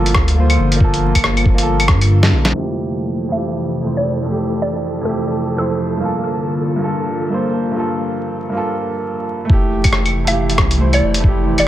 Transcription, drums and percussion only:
0.06 closed hi-hat
0.15 kick, cross-stick
0.28 closed hi-hat
0.50 closed hi-hat, claves
0.72 closed hi-hat
0.80 kick
0.94 closed hi-hat
1.15 kick, closed hi-hat, claves
1.24 cross-stick
1.37 closed hi-hat, claves
1.46 kick
1.58 closed hi-hat
1.80 closed hi-hat, claves
1.88 kick, cross-stick
2.01 closed hi-hat, claves
2.23 snare, closed hi-hat
2.45 snare, closed hi-hat
9.50 kick
9.84 kick, closed hi-hat, claves
9.93 cross-stick
10.05 closed hi-hat, claves
10.27 closed hi-hat
10.50 closed hi-hat
10.58 kick, cross-stick
10.71 closed hi-hat
10.93 closed hi-hat, claves
11.14 closed hi-hat
11.24 kick
11.58 closed hi-hat, claves

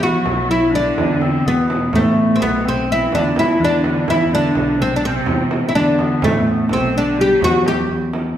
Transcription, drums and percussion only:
0.26 frame drum
0.98 frame drum
1.21 frame drum
1.70 frame drum
1.93 frame drum
2.41 frame drum
3.12 frame drum
3.36 frame drum
3.84 frame drum
4.08 frame drum
4.55 frame drum
5.26 frame drum
5.51 frame drum
5.99 frame drum
6.22 frame drum
6.69 frame drum
7.42 frame drum
7.66 frame drum
8.13 frame drum

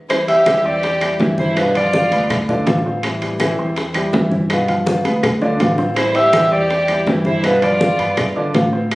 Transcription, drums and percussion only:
0.09 high bongo, high conga, high timbale, claves
0.28 high conga, high timbale
0.46 high bongo, high conga, high timbale, low timbale, claves
0.64 high bongo, high conga
0.83 high bongo, high conga, high timbale
1.01 high bongo, high conga, high timbale, claves
1.20 high bongo, low bongo, high conga, low timbale
1.38 high bongo, high conga
1.57 high bongo, high conga, high timbale, claves
1.75 high conga, high timbale
1.93 high bongo, high conga, low timbale
2.12 high bongo, high conga, high timbale
2.30 high bongo, high conga, low conga, high timbale, claves
2.49 high bongo, high conga, low conga
2.67 high bongo, low bongo, high conga, high timbale, low timbale
2.85 high bongo, high conga
3.03 high bongo, high conga, high timbale, claves
3.22 high conga, high timbale
3.40 high bongo, high conga, high timbale, low timbale, claves
3.58 high bongo, high conga
3.76 high bongo, high conga, high timbale
3.94 high bongo, high conga, high timbale, claves
4.13 high bongo, low bongo, high conga, low timbale
4.31 high bongo, high conga
4.50 high bongo, high conga, high timbale, claves
4.68 high conga, high timbale
4.86 high bongo, high conga, low timbale
5.05 high bongo, high conga, high timbale
5.23 high bongo, high conga, low conga, high timbale, claves
5.42 low bongo, high conga
5.60 low bongo, high conga, high timbale, low timbale
5.78 low bongo, high conga
5.96 high bongo, high conga, high timbale, claves
6.15 high conga, high timbale
6.33 high bongo, high conga, high timbale, low timbale, claves
6.52 high bongo, high conga
6.70 high bongo, high conga, high timbale
6.88 high bongo, high conga, high timbale, claves
7.07 high bongo, low bongo, high conga, low timbale
7.25 high bongo, high conga
7.43 high bongo, high conga, high timbale, claves
7.62 high conga, high timbale
7.80 high bongo, high conga, low timbale
7.99 high bongo, high conga, high timbale
8.17 high bongo, high conga, low conga, high timbale, claves
8.36 high bongo, high conga
8.54 high bongo, low bongo, high conga, high timbale, low timbale
8.73 high bongo, high conga
8.91 high bongo, high conga, high timbale, claves

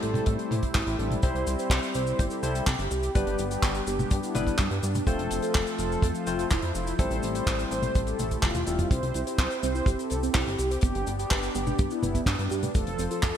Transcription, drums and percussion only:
0.03 closed hi-hat
0.14 closed hi-hat, high tom
0.26 kick, closed hi-hat
0.39 closed hi-hat
0.51 closed hi-hat, high tom
0.63 kick, closed hi-hat
0.75 kick, clap, closed hi-hat
0.87 closed hi-hat
0.99 closed hi-hat
1.11 closed hi-hat, high tom
1.23 kick, closed hi-hat, cabasa
1.36 closed hi-hat
1.47 closed hi-hat, cabasa
1.59 closed hi-hat, cabasa
1.70 kick, clap, closed hi-hat, cabasa
1.83 closed hi-hat, cabasa
1.94 closed hi-hat, cabasa
2.07 cabasa
2.19 kick, closed hi-hat, cabasa
2.30 closed hi-hat, cabasa
2.43 closed hi-hat, cabasa
2.55 closed hi-hat, cabasa
2.67 kick, clap, closed hi-hat, cabasa
2.79 closed hi-hat
2.91 closed hi-hat, cabasa
3.03 closed hi-hat, cabasa
3.15 kick, closed hi-hat, cabasa
3.27 closed hi-hat
3.38 closed hi-hat, cabasa
3.51 closed hi-hat, cabasa
3.63 kick, clap, closed hi-hat, cabasa
3.75 closed hi-hat, cabasa
3.87 closed hi-hat, cabasa
3.99 high tom, cabasa
4.11 kick, closed hi-hat, cabasa
4.23 closed hi-hat, cabasa
4.35 closed hi-hat, high tom, cabasa
4.47 kick, closed hi-hat, cabasa
4.58 kick, clap, closed hi-hat, cabasa
4.71 closed hi-hat
4.83 closed hi-hat, cabasa
4.95 closed hi-hat, high tom, cabasa
5.07 kick, closed hi-hat, cabasa
5.19 closed hi-hat
5.31 closed hi-hat, cabasa
5.42 closed hi-hat, cabasa
5.55 kick, clap, closed hi-hat, cabasa
5.67 closed hi-hat, cabasa
5.78 closed hi-hat, cabasa
5.92 cabasa
6.02 kick, closed hi-hat, cabasa
6.14 closed hi-hat, cabasa
6.27 closed hi-hat, cabasa
6.39 closed hi-hat, cabasa
6.50 kick, clap, closed hi-hat, cabasa
6.62 closed hi-hat
6.75 closed hi-hat, cabasa
6.87 closed hi-hat, cabasa
6.99 kick, closed hi-hat, cabasa
7.11 closed hi-hat, cabasa
7.23 closed hi-hat, cabasa
7.35 closed hi-hat, cabasa
7.47 kick, clap, closed hi-hat, cabasa
7.59 closed hi-hat, cabasa
7.71 closed hi-hat, cabasa
7.82 closed hi-hat, high tom, cabasa
7.95 kick, closed hi-hat, cabasa
8.07 closed hi-hat, cabasa
8.19 closed hi-hat, high tom, cabasa
8.31 kick, closed hi-hat, cabasa
8.43 kick, clap, closed hi-hat, high tom, cabasa
8.55 closed hi-hat, high tom, cabasa
8.67 closed hi-hat, cabasa
8.79 closed hi-hat, mid tom, cabasa
8.91 kick, closed hi-hat, cabasa
9.03 closed hi-hat
9.14 closed hi-hat, cabasa
9.27 closed hi-hat, cabasa
9.38 kick, clap, closed hi-hat, cabasa
9.51 closed hi-hat, cabasa
9.63 closed hi-hat, cabasa
9.75 cabasa
9.86 kick, closed hi-hat, cabasa
9.99 closed hi-hat, cabasa
10.10 closed hi-hat, cabasa
10.23 closed hi-hat, cabasa
10.35 kick, clap, closed hi-hat, cabasa
10.48 closed hi-hat
10.58 closed hi-hat, cabasa
10.71 closed hi-hat, cabasa
10.81 kick, closed hi-hat, cabasa
10.95 closed hi-hat
11.07 closed hi-hat, cabasa
11.19 closed hi-hat, cabasa
11.30 kick, clap, closed hi-hat, cabasa
11.43 closed hi-hat, cabasa
11.55 closed hi-hat, cabasa
11.67 high tom, cabasa
11.79 kick, closed hi-hat, cabasa
11.90 closed hi-hat, cabasa
12.03 closed hi-hat, high tom, cabasa
12.15 kick, closed hi-hat, cabasa
12.26 kick, clap, closed hi-hat, cabasa
12.39 closed hi-hat
12.50 closed hi-hat, cabasa
12.63 closed hi-hat, high tom, cabasa
12.75 kick, closed hi-hat, cabasa
12.87 closed hi-hat
12.99 closed hi-hat, cabasa
13.11 closed hi-hat, cabasa
13.23 kick, clap, closed hi-hat, cabasa

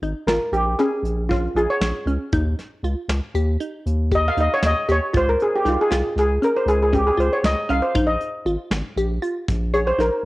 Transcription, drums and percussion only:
0.02 closed hi-hat
0.28 snare, closed hi-hat
0.53 closed hi-hat
0.79 snare, closed hi-hat
1.05 closed hi-hat
1.31 kick, snare, closed hi-hat
1.57 closed hi-hat
1.81 snare, closed hi-hat
2.07 closed hi-hat
2.32 kick, closed hi-hat
2.59 snare, closed hi-hat
2.84 closed hi-hat
3.09 snare, closed hi-hat
3.35 closed hi-hat
3.60 closed hi-hat
3.86 closed hi-hat
4.12 kick, closed hi-hat
4.37 closed hi-hat
4.63 snare, closed hi-hat
4.89 snare, closed hi-hat
5.14 kick, closed hi-hat
5.40 closed hi-hat
5.66 snare, closed hi-hat
5.92 snare, closed hi-hat
6.18 snare, closed hi-hat
6.43 closed hi-hat
6.68 closed hi-hat
6.93 kick, closed hi-hat
7.20 closed hi-hat
7.44 snare, closed hi-hat
7.70 closed hi-hat
7.95 kick, closed hi-hat
8.21 closed hi-hat
8.46 closed hi-hat
8.71 snare, closed hi-hat
8.97 closed hi-hat
9.23 closed hi-hat
9.48 kick, snare, closed hi-hat
9.74 closed hi-hat
10.00 snare, closed hi-hat

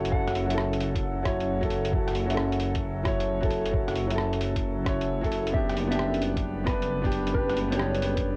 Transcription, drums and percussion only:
0.05 closed hi-hat
0.12 kick
0.28 cross-stick, closed hi-hat
0.35 open hi-hat
0.50 closed hi-hat
0.58 cross-stick
0.73 closed hi-hat
0.80 open hi-hat
0.95 kick, closed hi-hat
1.25 kick, cross-stick, open hi-hat
1.40 closed hi-hat
1.63 kick, closed hi-hat
1.70 open hi-hat
1.85 closed hi-hat
1.93 kick
2.08 cross-stick, closed hi-hat
2.15 open hi-hat
2.30 closed hi-hat
2.37 cross-stick
2.52 closed hi-hat
2.60 open hi-hat
2.75 kick, closed hi-hat
3.05 kick, cross-stick, open hi-hat
3.20 closed hi-hat
3.43 kick, closed hi-hat
3.50 open hi-hat
3.65 closed hi-hat
3.73 kick
3.88 cross-stick, closed hi-hat
3.95 open hi-hat
4.10 closed hi-hat
4.18 cross-stick
4.33 closed hi-hat
4.41 open hi-hat
4.56 kick, closed hi-hat
4.86 kick, cross-stick, open hi-hat
5.01 closed hi-hat
5.24 kick, closed hi-hat
5.32 open hi-hat
5.47 closed hi-hat
5.54 kick
5.69 cross-stick, closed hi-hat
5.77 open hi-hat
5.92 closed hi-hat
5.99 cross-stick
6.14 closed hi-hat
6.22 open hi-hat
6.37 kick, closed hi-hat
6.67 kick, cross-stick, open hi-hat
6.82 closed hi-hat
7.04 kick, closed hi-hat
7.12 open hi-hat
7.27 closed hi-hat
7.34 kick
7.50 cross-stick, closed hi-hat
7.57 open hi-hat
7.72 closed hi-hat
7.80 cross-stick
7.95 closed hi-hat
8.02 open hi-hat
8.17 kick, closed hi-hat

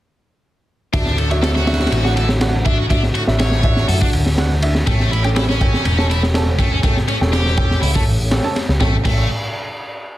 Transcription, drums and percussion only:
0.94 kick, ride
1.06 snare
1.18 ride
1.31 ride
1.43 snare, ride
1.56 snare
1.67 snare, ride
1.73 snare, ride
1.80 snare, ride
1.86 snare, ride
1.92 ride
2.05 snare
2.17 ride
2.29 snare
2.41 snare, ride
2.66 kick, ride
2.90 kick, ride
3.03 snare
3.15 ride
3.27 snare
3.39 snare, ride
3.52 snare
3.63 kick, ride
3.76 snare
3.89 open hi-hat
4.02 kick
4.13 ride
4.26 snare
4.38 snare, ride
4.62 ride
4.75 snare
4.87 kick, ride
5.00 snare
5.13 ride
5.24 ride
5.36 snare, ride
5.49 snare
5.61 kick, ride
5.74 snare
5.85 ride
5.99 snare
6.11 ride
6.23 snare
6.34 snare, ride
6.59 kick, ride
6.83 kick, ride
6.97 snare
7.08 ride
7.22 snare
7.33 snare, ride
7.46 snare
7.57 kick, ride
7.71 snare
7.83 open hi-hat
7.96 kick
8.31 snare, ride
8.56 snare, ride
8.69 snare
8.81 kick, snare
9.05 kick, crash

